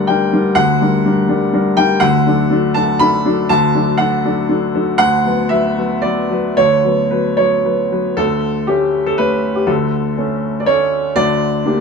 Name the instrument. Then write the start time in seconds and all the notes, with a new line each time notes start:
upright piano
Already playing: D2 D3 G3 D4 A#4 D5 F#5
0.07 G3 D4 A#4 G5
0.33 G3 D4 A#4
0.55 D2 D3 F#5
0.81 G3 D4 A#4
1.05 G3 D4 A#4
1.28 G3 D4 A#4
1.53 G3 D4 A#4
1.77 G3 D4 A#4 G5
2.00 D2 D3 F#5
2.27 F#3 D4 A4
2.50 F#3 D4 A4
2.74 F#3 D4 A4 A5
2.99 F#3 D4 A4 B5
3.25 F#3 D4 A4
3.49 D2 D3 A5
3.75 F#3 D4 A4
3.98 F#3 D4 A4 F#5
4.25 F#3 D4 A4
4.49 F#3 D4 A4
4.74 F#3 D4 A4
4.98 D2 D3 F#5
5.25 F#3 B3 B4
5.49 F#3 B3 B4 E5
5.77 F#3 B3 B4
6.02 F#3 B3 B4 D5
6.30 F#3 B3 B4
6.57 D2 D3 C#5
6.84 F#3 B3 B4
7.11 F#3 B3 B4
7.37 F#3 B3 B4 C#5
7.65 F#3 B3 B4
7.92 F#3 B3 B4
8.17 D2 D3 A4
8.67 A3 C#4 G4 A4
9.06 A4
9.18 A3 C#4 A4 B4
9.55 G4
9.66 D2 D3 A4
10.18 A3 C#4 A4
10.60 D5
10.66 A3 C#4 A4 C#5
11.16 D2 D3 D5
11.66 A#3 D4 G4